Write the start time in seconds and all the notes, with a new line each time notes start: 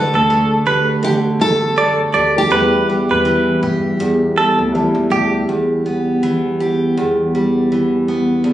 Already playing: D3 A3 D4 G4 A4
0.14 D2 A4
0.30 A3
0.66 D2 G4 B4
1.03 D3 G4
1.39 F#2 A3 A4
1.78 A3 D5
2.14 D2 G4 D5
2.38 G4
2.50 E2 G3 E4 B4
2.54 B4
2.89 G3
3.10 E2 B4
3.25 E3
3.63 G2 G4
3.99 E2
4.36 G3 A4, muted upright bass stroke
4.58 D2
4.72 E3 G3 E4 A4
4.95 E2
5.10 D2 G4
5.49 E2
5.86 B3
6.23 E3
6.60 G4
6.97 E2
7.35 G3
7.72 E3
8.08 B3
8.44 E2